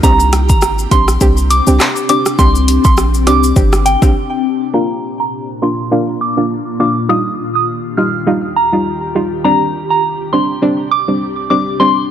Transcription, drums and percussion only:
0.03 kick, shaker, maracas
0.20 maracas, shaker
0.33 cross-stick, closed hi-hat, shaker, maracas
0.49 kick, maracas, shaker
0.61 cross-stick, maracas, shaker
0.78 maracas, shaker
0.91 kick, closed hi-hat, shaker
1.08 cross-stick, shaker, maracas
1.21 kick, maracas, shaker
1.37 maracas, shaker
1.50 closed hi-hat, maracas, shaker
1.67 maracas, shaker
1.80 cross-stick, clap, maracas, shaker
1.96 maracas, shaker
2.09 closed hi-hat, shaker
2.26 cross-stick, maracas, shaker
2.39 kick, shaker, maracas
2.55 maracas, shaker
2.68 closed hi-hat, shaker, maracas
2.84 kick, maracas, shaker
2.97 cross-stick, maracas, shaker
3.14 maracas, shaker
3.27 cross-stick, closed hi-hat, shaker
3.43 shaker, maracas
3.56 kick, maracas, shaker
3.73 cross-stick, maracas, shaker
3.86 closed hi-hat, shaker, maracas
4.02 kick, cross-stick, high timbale, shaker, maracas

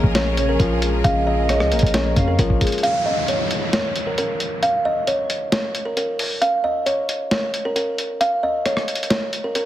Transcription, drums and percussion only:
0.04 kick
0.15 snare, closed hi-hat
0.37 closed hi-hat
0.60 kick, closed hi-hat
0.82 closed hi-hat
1.04 kick, closed hi-hat
1.49 cross-stick, closed hi-hat
1.60 cross-stick
1.72 closed hi-hat
1.79 kick, closed hi-hat
1.87 closed hi-hat
1.94 snare, closed hi-hat
2.16 kick, closed hi-hat
2.39 kick, closed hi-hat
2.50 kick
2.61 kick, closed hi-hat, open hi-hat
2.67 closed hi-hat
2.72 closed hi-hat
2.78 closed hi-hat
2.84 closed hi-hat
3.28 closed hi-hat
3.51 closed hi-hat
3.73 snare, closed hi-hat
3.96 closed hi-hat
4.18 closed hi-hat
4.40 closed hi-hat
4.63 closed hi-hat
5.07 closed hi-hat
5.30 closed hi-hat
5.52 snare, closed hi-hat
5.75 closed hi-hat
5.97 closed hi-hat
6.19 open hi-hat
6.42 closed hi-hat
6.86 closed hi-hat
7.09 closed hi-hat
7.31 snare, closed hi-hat
7.54 closed hi-hat
7.76 closed hi-hat
7.98 closed hi-hat
8.21 closed hi-hat
8.66 cross-stick, closed hi-hat
8.77 cross-stick
8.88 closed hi-hat
8.95 closed hi-hat
9.03 closed hi-hat
9.10 snare, closed hi-hat
9.33 closed hi-hat
9.55 closed hi-hat

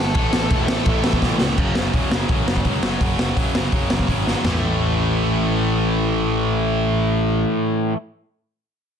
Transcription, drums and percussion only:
0.15 kick, crash
0.33 snare
0.50 kick, crash
0.68 snare
0.86 kick, crash
1.04 snare
1.13 kick
1.22 kick, snare
1.40 snare
1.58 kick, crash
1.75 snare
1.94 kick, open hi-hat
2.11 snare
2.29 kick, open hi-hat
2.48 snare
2.56 kick
2.65 kick, open hi-hat
2.83 snare
3.01 kick, open hi-hat
3.19 snare
3.37 kick, open hi-hat
3.55 snare
3.72 kick, open hi-hat
3.90 snare
3.99 kick
4.08 kick, open hi-hat
4.27 snare
4.45 snare, floor tom, splash

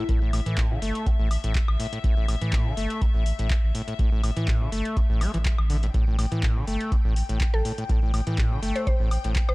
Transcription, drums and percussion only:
0.09 kick, closed hi-hat
0.33 open hi-hat, high woodblock
0.46 closed hi-hat
0.58 kick, clap, closed hi-hat
0.82 open hi-hat
0.95 closed hi-hat
1.06 kick, closed hi-hat
1.31 open hi-hat, high woodblock
1.44 closed hi-hat
1.55 kick, clap, closed hi-hat
1.68 high woodblock
1.80 open hi-hat
1.93 closed hi-hat
2.04 kick, closed hi-hat
2.28 open hi-hat, high woodblock
2.41 closed hi-hat
2.53 kick, clap, closed hi-hat
2.77 open hi-hat
2.90 closed hi-hat
3.02 kick, closed hi-hat
3.26 open hi-hat
3.39 closed hi-hat
3.50 kick, clap, closed hi-hat
3.75 open hi-hat
3.88 closed hi-hat
3.99 kick, closed hi-hat
4.24 open hi-hat, high woodblock
4.37 closed hi-hat
4.48 kick, clap, closed hi-hat
4.72 open hi-hat
4.85 closed hi-hat
4.97 kick, closed hi-hat
5.21 open hi-hat, high woodblock
5.34 closed hi-hat
5.45 kick, clap, closed hi-hat
5.58 high woodblock
5.70 open hi-hat
5.83 closed hi-hat
5.94 kick, closed hi-hat
6.19 open hi-hat, high woodblock
6.32 closed hi-hat
6.43 kick, clap, closed hi-hat
6.67 open hi-hat
6.81 closed hi-hat
6.92 kick, closed hi-hat
7.16 open hi-hat
7.29 closed hi-hat
7.41 kick, clap, closed hi-hat
7.65 open hi-hat
7.78 closed hi-hat
7.89 kick, closed hi-hat
8.14 open hi-hat, high woodblock
8.27 closed hi-hat
8.38 kick, clap, closed hi-hat
8.63 open hi-hat
8.76 closed hi-hat
8.87 kick, closed hi-hat
9.11 open hi-hat, high woodblock
9.24 closed hi-hat
9.36 kick, clap, closed hi-hat
9.49 high woodblock

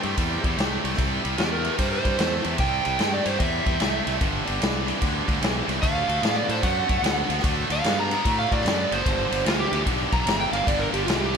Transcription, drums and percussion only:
0.03 ride
0.17 kick, ride
0.44 kick, ride
0.58 snare, ride
0.85 ride
0.94 snare
0.98 kick, ride
1.25 ride
1.38 snare, ride
1.65 ride
1.78 kick, ride
2.05 kick, ride
2.19 snare, ride
2.44 ride
2.58 kick, ride
2.85 ride
2.99 snare, ride
3.26 ride
3.40 kick, ride
3.66 kick, ride
3.80 snare, ride
4.07 ride
4.21 kick, ride
4.47 ride
4.62 snare, ride
4.88 ride
5.02 kick, ride
5.28 kick, ride
5.42 snare, ride
5.69 ride
5.83 kick, ride
6.09 ride
6.23 snare, ride
6.49 ride
6.63 kick, ride
6.89 kick, ride
7.04 snare, ride
7.30 ride
7.39 snare
7.44 kick, ride
7.70 ride
7.84 snare, ride
8.11 ride
8.25 kick, ride
8.52 kick, ride
8.61 snare
8.66 snare, ride
8.92 ride
9.06 kick, ride
9.32 ride
9.46 snare, ride
9.73 ride
9.86 kick, ride
10.12 kick, ride
10.27 snare, ride
10.53 ride
10.67 kick, ride
10.94 ride
11.08 snare, ride

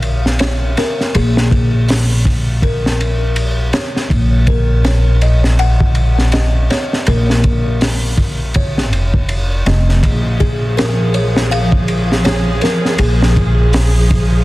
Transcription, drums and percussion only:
0.02 ride
0.26 snare
0.39 snare, ride
0.77 snare, ride
1.01 snare
1.15 ride
1.37 snare
1.51 kick, ride
1.89 snare, open hi-hat
2.25 kick, ride
2.62 kick, ride
2.86 snare
3.00 ride
3.36 ride
3.73 snare, ride
3.96 snare
4.10 kick, ride
4.47 kick, ride
4.85 snare, ride
5.21 ride
5.44 snare
5.59 ride
5.80 kick
5.95 ride
6.18 snare
6.32 snare, ride
6.70 snare, ride
6.93 snare
7.07 ride
7.30 snare
7.44 kick, ride
7.81 snare, open hi-hat
8.17 kick, ride
8.54 kick, ride
8.78 snare
8.93 ride
9.14 kick
9.29 ride
9.66 snare, ride
9.89 snare
10.03 kick, ride
10.40 kick, ride
10.78 snare, ride
11.14 ride
11.36 snare
11.52 ride
11.72 kick
11.88 ride
12.12 snare
12.25 snare, ride
12.61 snare, ride
12.85 snare
12.98 ride
13.22 snare
13.36 kick, ride
13.73 snare, open hi-hat
14.10 kick, ride

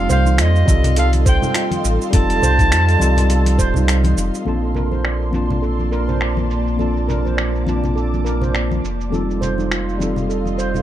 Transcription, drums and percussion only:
0.09 low conga, cabasa
0.25 high conga, cabasa
0.38 finger snap, closed hi-hat, cabasa
0.56 cabasa
0.68 kick, high conga, cabasa
0.84 closed hi-hat, low conga, cabasa
0.96 closed hi-hat, cabasa
1.13 closed hi-hat, high conga, cabasa
1.26 kick, cabasa
1.42 low conga, cabasa
1.54 finger snap, closed hi-hat, cabasa
1.71 closed hi-hat, high conga, cabasa
1.85 cabasa
2.01 cabasa
2.13 kick, closed hi-hat, high conga, cabasa
2.30 closed hi-hat, cabasa
2.42 low conga, cabasa
2.58 kick, closed hi-hat, high conga, cabasa
2.72 finger snap, closed hi-hat, cabasa
2.89 closed hi-hat, cabasa
3.00 high conga, cabasa
3.17 closed hi-hat, low conga, cabasa
3.30 closed hi-hat, cabasa
3.45 closed hi-hat, high conga, cabasa
3.59 kick, cabasa
3.74 low conga, cabasa
3.88 finger snap, closed hi-hat, cabasa
4.04 closed hi-hat, high conga, cabasa
4.17 cabasa
4.34 cabasa
4.45 high conga, cabasa
4.64 cabasa
4.75 low conga, cabasa
4.92 high conga, cabasa
5.05 finger snap, cabasa
5.22 cabasa
5.33 high conga, cabasa
5.50 low conga, cabasa
5.63 cabasa
5.80 high conga, cabasa
5.92 cabasa
6.09 low conga, cabasa
6.21 finger snap, cabasa
6.37 high conga, cabasa
6.51 cabasa
6.67 cabasa
6.79 high conga, cabasa
6.97 cabasa
7.09 low conga, cabasa
7.25 high conga, cabasa
7.38 finger snap, cabasa
7.55 cabasa
7.67 high conga, cabasa
7.84 low conga, cabasa
7.97 cabasa
8.14 high conga, cabasa
8.26 cabasa
8.41 low conga, cabasa
8.55 finger snap, cabasa
8.71 high conga, cabasa
8.85 cabasa
9.01 cabasa
9.13 high conga, cabasa
9.31 cabasa
9.42 low conga, cabasa
9.58 high conga, cabasa
9.71 finger snap, cabasa
9.89 cabasa
10.00 high conga, cabasa
10.16 low conga, cabasa
10.30 cabasa
10.45 high conga, cabasa
10.59 cabasa
10.74 low conga, cabasa

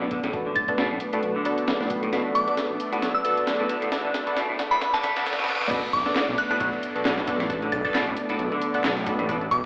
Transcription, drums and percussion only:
0.01 snare
0.11 kick, closed hi-hat
0.23 snare, closed hi-hat
0.33 kick, closed hi-hat
0.56 kick, closed hi-hat
0.68 kick, closed hi-hat
0.78 snare, closed hi-hat
1.00 closed hi-hat
1.13 closed hi-hat
1.23 closed hi-hat
1.45 closed hi-hat
1.58 closed hi-hat
1.68 snare, closed hi-hat
1.81 snare
1.90 kick, closed hi-hat
2.03 closed hi-hat
2.13 snare, closed hi-hat
2.35 closed hi-hat
2.48 closed hi-hat
2.57 snare, closed hi-hat
2.80 closed hi-hat
2.92 closed hi-hat
3.02 snare, closed hi-hat
3.25 closed hi-hat
3.37 closed hi-hat
3.47 snare, closed hi-hat
3.69 closed hi-hat
3.82 closed hi-hat
3.92 snare, closed hi-hat
4.14 snare, closed hi-hat
4.27 closed hi-hat
4.37 snare, closed hi-hat
4.59 snare, closed hi-hat
4.72 closed hi-hat
4.81 snare, closed hi-hat
4.94 snare
5.03 snare, closed hi-hat
5.16 snare, closed hi-hat
5.26 snare, closed hi-hat
5.33 snare
5.39 snare
5.44 snare
5.48 snare, closed hi-hat
5.55 snare
5.61 snare, closed hi-hat
5.66 snare
5.71 kick, closed hi-hat, crash
5.83 closed hi-hat
5.93 kick, closed hi-hat
6.06 snare, closed hi-hat
6.16 snare, clap, closed hi-hat
6.28 closed hi-hat
6.38 closed hi-hat
6.51 closed hi-hat
6.60 kick, closed hi-hat
6.73 closed hi-hat
6.83 closed hi-hat
6.96 closed hi-hat
7.05 snare, clap, closed hi-hat
7.18 snare, closed hi-hat
7.27 kick, closed hi-hat
7.40 snare, closed hi-hat
7.50 kick, closed hi-hat
7.62 closed hi-hat
7.72 kick, closed hi-hat
7.85 kick, closed hi-hat
7.94 snare, clap, closed hi-hat
8.07 closed hi-hat
8.17 closed hi-hat
8.29 closed hi-hat
8.39 closed hi-hat
8.52 closed hi-hat
8.62 closed hi-hat
8.74 closed hi-hat
8.84 snare, clap, closed hi-hat
8.97 snare, closed hi-hat
9.06 kick, closed hi-hat
9.19 closed hi-hat
9.29 kick, closed hi-hat
9.41 closed hi-hat
9.51 kick, closed hi-hat

